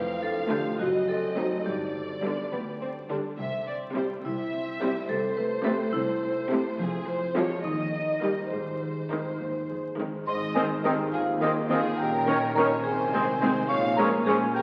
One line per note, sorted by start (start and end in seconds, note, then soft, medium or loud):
0.00 0.62 F1 medium
0.00 0.63 F2 medium
0.00 0.82 F2 medium
0.00 1.68 A3 soft
0.00 0.50 A4 soft
0.00 0.21 B4 medium
0.00 0.78 F5 medium
0.23 0.82 D4 soft
0.23 0.49 A4 medium
0.50 0.72 D3 soft
0.50 0.72 A3 soft
0.50 0.72 D4 soft
0.50 0.72 F4 soft
0.50 0.82 F4 soft
0.50 0.78 G4 medium
0.50 1.37 A4 soft
0.79 1.48 F#1 medium
0.79 1.48 F#2 medium
0.79 1.68 F#2 soft
0.79 1.06 F#4 medium
0.79 1.65 D#5 medium
1.09 1.68 C4 soft
1.09 1.35 A4 medium
1.37 1.58 F#3 soft
1.37 1.58 A3 soft
1.37 1.58 C4 soft
1.37 1.58 D#4 soft
1.37 1.68 D#4 soft
1.37 1.68 A4 soft
1.37 1.63 C5 medium
1.65 2.35 G1 soft
1.65 2.35 G2 medium
1.65 3.41 G2 soft
1.65 3.05 G4 medium
1.65 2.96 D5 soft
1.95 3.09 D3 soft
2.23 2.44 D3 soft
2.23 2.44 G3 soft
2.23 3.40 B3 soft
2.23 2.45 B3 soft
2.23 2.45 D4 soft
2.52 3.21 D2 soft
2.52 2.60 B3 soft
2.52 3.95 G4 soft
2.81 2.89 C4 soft
2.81 3.41 D4 soft
3.09 3.31 D3 soft
3.09 3.41 D3 soft
3.09 3.31 G3 soft
3.09 3.18 D4 soft
3.38 4.07 C2 soft
3.38 4.23 C3 soft
3.38 3.65 E5 soft
3.68 4.51 C4 soft
3.68 3.76 D5 soft
3.94 4.16 C3 soft
3.94 4.16 G3 soft
3.94 4.17 C4 soft
3.94 4.17 E4 soft
3.94 4.80 E4 soft
3.94 4.80 G4 soft
3.94 4.05 C5 soft
4.23 4.92 C2 soft
4.23 5.08 C3 soft
4.23 4.77 E4 medium
4.23 5.08 E5 medium
4.53 5.65 C4 soft
4.80 5.02 C3 soft
4.80 5.02 G3 soft
4.80 5.02 C4 soft
4.80 6.21 E4 soft
4.80 5.02 E4 soft
4.80 5.07 G4 medium
4.80 5.12 G4 soft
5.08 5.77 C2 medium
5.08 6.81 C3 soft
5.08 5.35 A4 medium
5.08 6.76 C5 medium
5.37 6.49 A3 soft
5.37 5.63 B4 medium
5.64 5.87 C3 medium
5.64 5.87 A3 soft
5.64 7.67 C4 soft
5.64 5.87 C4 medium
5.64 5.87 E4 medium
5.64 5.91 A4 medium
5.93 6.62 C2 medium
5.93 6.74 E4 medium
5.93 6.82 A4 soft
6.22 6.81 E4 soft
6.50 6.72 C3 medium
6.50 6.81 A3 soft
6.50 6.72 A3 medium
6.50 6.72 C4 medium
6.50 6.72 E4 medium
6.78 7.48 F1 medium
6.78 7.48 F2 medium
6.78 7.67 F3 medium
6.78 7.08 G#4 medium
7.06 7.35 F4 soft
7.06 7.35 C5 medium
7.35 7.58 C3 soft
7.35 7.58 F3 soft
7.35 7.58 G#3 soft
7.35 7.58 F4 soft
7.35 7.67 F4 soft
7.35 7.68 G#4 soft
7.35 7.64 C#5 soft
7.63 8.34 D#2 medium
7.63 8.35 D#2 medium
7.63 8.55 D#3 soft
7.63 8.19 D#4 medium
7.63 8.49 D#5 medium
7.95 9.10 D#4 soft
8.22 8.45 D#3 soft
8.22 8.45 G3 soft
8.22 8.45 A#3 soft
8.22 8.45 D#4 soft
8.22 8.50 G4 soft
8.22 8.55 G4 soft
8.22 8.55 A#4 soft
8.51 9.22 G#1 soft
8.51 9.22 G#2 soft
8.51 10.26 G#2 soft
8.51 9.93 G#4 soft
8.51 9.80 C5 soft
8.82 9.97 D#3 soft
9.11 9.32 D#3 soft
9.11 9.32 G#3 soft
9.11 9.33 C4 soft
9.11 11.41 D#4 soft
9.11 9.33 D#4 soft
9.39 10.10 D#2 soft
9.39 9.47 D#2 soft
9.39 10.84 C5 soft
9.69 9.77 F2 soft
9.69 10.55 G#4 soft
9.98 10.06 G2 soft
9.98 10.29 D#3 soft
9.98 10.20 D#3 soft
9.98 10.20 G#3 soft
9.98 10.20 C4 soft
9.98 10.20 D#4 soft
10.26 10.98 G#1 medium
10.26 12.01 G#2 soft
10.26 10.98 G#2 soft
10.26 13.65 D#3 soft
10.26 11.94 D#4 soft
10.26 10.53 C5 medium
10.26 10.54 D#5 medium
10.26 10.33 C6 medium
10.55 10.66 D#3 soft
10.55 10.64 D#3 soft
10.55 10.64 C4 soft
10.55 10.64 D#4 soft
10.55 10.82 G#4 soft
10.55 10.65 G#4 soft
10.55 10.64 C5 soft
10.55 10.66 D#5 soft
10.55 10.61 G#5 medium
10.83 10.94 D#3 soft
10.83 10.93 D#3 soft
10.83 10.93 C4 soft
10.83 10.93 D#4 soft
10.83 11.11 G4 soft
10.83 10.95 G#4 soft
10.83 10.93 A#4 soft
10.83 12.01 C5 soft
10.83 10.95 D#5 soft
10.83 10.91 G5 medium
11.12 11.84 D#2 soft
11.12 11.85 D#2 medium
11.12 11.39 F4 medium
11.12 11.21 G#4 soft
11.12 11.70 G#4 soft
11.12 11.43 F5 medium
11.41 11.51 D#3 soft
11.41 11.50 D#3 soft
11.41 11.51 C4 soft
11.41 11.49 D#4 soft
11.41 11.68 D#4 soft
11.41 12.56 D#4 soft
11.41 11.50 G4 soft
11.41 11.53 G#4 soft
11.41 11.69 D#5 medium
11.41 11.52 D#5 soft
11.69 11.79 D#3 soft
11.69 11.78 D#3 soft
11.69 11.78 C4 soft
11.69 11.79 D#4 soft
11.69 11.96 F4 soft
11.69 11.81 G#4 soft
11.69 11.98 G#4 medium
11.69 12.01 G#4 soft
11.69 11.80 D#5 soft
11.69 11.99 F5 medium
11.98 12.70 A#1 medium
11.98 12.87 A#2 soft
11.98 12.71 A#2 medium
11.98 12.83 C#4 soft
11.98 12.52 G4 medium
11.98 12.56 A#4 medium
11.98 12.54 G5 medium
12.26 12.37 D#3 soft
12.26 12.36 D#3 soft
12.26 12.36 C#4 soft
12.26 12.87 C#4 soft
12.26 12.37 D#4 soft
12.26 12.38 A#4 soft
12.26 12.38 C#5 soft
12.55 12.65 D#3 soft
12.55 12.66 D#3 soft
12.55 12.66 C#4 soft
12.55 12.65 D#4 soft
12.55 13.41 D#4 soft
12.55 12.82 A#4 medium
12.55 12.67 A#4 soft
12.55 12.87 A#4 soft
12.55 12.84 C#5 medium
12.55 12.67 C#5 soft
12.55 12.61 A#5 medium
12.83 13.55 C2 medium
12.83 13.72 C3 soft
12.83 13.56 C3 medium
12.83 13.70 C4 soft
12.83 13.65 G#4 medium
12.83 13.68 C5 medium
12.83 13.67 G#5 medium
13.12 13.23 D#3 soft
13.12 13.22 G#3 soft
13.12 13.72 C4 soft
13.12 13.22 C4 soft
13.12 13.22 D#4 soft
13.12 13.23 G#4 soft
13.12 13.24 C5 soft
13.40 13.51 D#3 soft
13.40 13.50 G#3 soft
13.40 13.50 C4 soft
13.40 13.72 D#4 soft
13.40 13.51 D#4 soft
13.40 14.26 G#4 soft
13.40 13.53 G#4 soft
13.40 13.52 C5 soft
13.68 14.41 A#1 medium
13.68 14.41 A#2 medium
13.68 14.62 A#2 medium
13.68 14.62 F3 medium
13.68 14.62 C#4 medium
13.68 13.96 C#5 medium
13.68 13.98 F5 medium
13.68 13.75 C#6 medium
13.96 14.08 F3 soft
13.96 14.07 G#3 soft
13.96 14.07 C#4 soft
13.96 14.07 F4 soft
13.96 14.09 G#4 soft
13.96 14.25 A#4 medium
13.96 14.07 C#5 medium
13.96 14.10 C#5 soft
13.96 14.03 A#5 medium
14.26 14.36 F3 soft
14.26 14.36 G#3 medium
14.26 14.36 C#4 soft
14.26 14.35 F4 soft
14.26 14.53 G#4 medium
14.26 14.62 G#4 soft
14.26 14.38 G#4 soft
14.26 14.37 C5 medium
14.26 14.37 C#5 soft
14.26 14.54 G#5 medium
14.54 14.62 F1 medium
14.54 14.62 F2 medium
14.54 14.62 F4 soft
14.54 14.62 G4 medium
14.54 14.62 A#4 medium
14.54 14.61 G5 medium